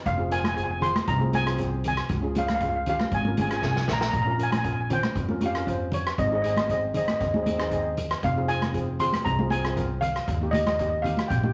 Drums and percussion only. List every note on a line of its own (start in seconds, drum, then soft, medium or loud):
0.06 kick loud
0.06 closed hi-hat soft
0.31 closed hi-hat medium
0.44 cross-stick medium
0.44 closed hi-hat medium
0.44 high conga medium
0.57 kick medium
0.57 closed hi-hat medium
0.82 closed hi-hat medium
0.82 low conga medium
0.96 cross-stick medium
0.96 closed hi-hat medium
0.96 high conga medium
1.08 kick loud
1.08 closed hi-hat medium
1.22 high conga medium
1.33 closed hi-hat medium
1.33 high conga medium
1.47 cross-stick medium
1.47 closed hi-hat medium
1.58 kick medium
1.58 closed hi-hat medium
1.84 closed hi-hat medium
1.84 low conga medium
1.97 cross-stick medium
1.97 closed hi-hat medium
2.09 kick medium
2.09 closed hi-hat medium
2.35 closed hi-hat medium
2.35 high conga medium
2.48 cross-stick medium
2.48 closed hi-hat medium
2.48 high conga medium
2.60 kick medium
2.60 closed hi-hat medium
2.86 closed hi-hat medium
2.86 low conga medium
2.99 cross-stick medium
2.99 closed hi-hat soft
2.99 high conga medium
3.12 kick medium
3.12 closed hi-hat soft
3.25 high conga medium
3.37 closed hi-hat medium
3.37 high conga medium
3.37 low conga medium
3.51 cross-stick medium
3.51 closed hi-hat medium
3.62 kick medium
3.62 snare medium
3.76 snare medium
3.88 snare medium
3.88 low conga medium
4.01 snare medium
4.13 kick loud
4.13 closed hi-hat soft
4.39 closed hi-hat medium
4.52 cross-stick medium
4.52 closed hi-hat medium
4.52 high conga medium
4.64 kick medium
4.64 closed hi-hat medium
4.90 closed hi-hat medium
4.90 low conga medium
5.03 cross-stick medium
5.03 closed hi-hat medium
5.03 high conga medium
5.15 kick loud
5.15 closed hi-hat medium
5.29 high conga medium
5.41 closed hi-hat medium
5.41 high conga medium
5.55 cross-stick medium
5.55 closed hi-hat medium
5.67 kick medium
5.67 closed hi-hat medium
5.92 closed hi-hat medium
5.92 low conga medium
6.07 cross-stick medium
6.07 closed hi-hat medium
6.18 kick medium
6.18 closed hi-hat medium
6.44 closed hi-hat medium
6.57 cross-stick medium
6.57 closed hi-hat medium
6.57 high conga medium
6.69 kick medium
6.69 closed hi-hat medium
6.94 closed hi-hat medium
6.94 low conga medium
7.08 cross-stick medium
7.08 closed hi-hat medium
7.08 high conga medium
7.21 kick medium
7.21 closed hi-hat medium
7.34 high conga medium
7.46 closed hi-hat medium
7.46 high conga medium
7.60 cross-stick medium
7.60 closed hi-hat medium
7.71 kick medium
7.71 closed hi-hat medium
7.97 closed hi-hat medium
7.97 low conga medium
8.11 cross-stick medium
8.11 closed hi-hat medium
8.23 kick loud
8.23 closed hi-hat medium
8.49 closed hi-hat medium
8.62 cross-stick medium
8.62 closed hi-hat medium
8.62 high conga medium
8.74 kick medium
8.74 closed hi-hat medium
8.99 closed hi-hat medium
8.99 low conga medium
9.13 cross-stick medium
9.13 closed hi-hat medium
9.13 high conga medium
9.26 kick medium
9.26 closed hi-hat medium
9.39 high conga medium
9.50 closed hi-hat medium
9.50 high conga medium
9.65 cross-stick medium
9.65 closed hi-hat medium
9.77 kick medium
9.77 closed hi-hat medium
10.02 closed hi-hat medium
10.02 low conga medium
10.16 cross-stick medium
10.16 closed hi-hat medium
10.28 kick medium
10.28 closed hi-hat medium
10.53 closed hi-hat medium
10.53 high conga medium
10.53 low conga medium
10.66 cross-stick medium
10.66 closed hi-hat medium
10.66 high conga medium
10.79 kick medium
10.79 closed hi-hat medium
11.04 closed hi-hat medium
11.04 low conga medium
11.17 cross-stick medium
11.17 closed hi-hat medium
11.17 high conga medium
11.30 kick loud
11.30 closed hi-hat medium
11.43 high conga medium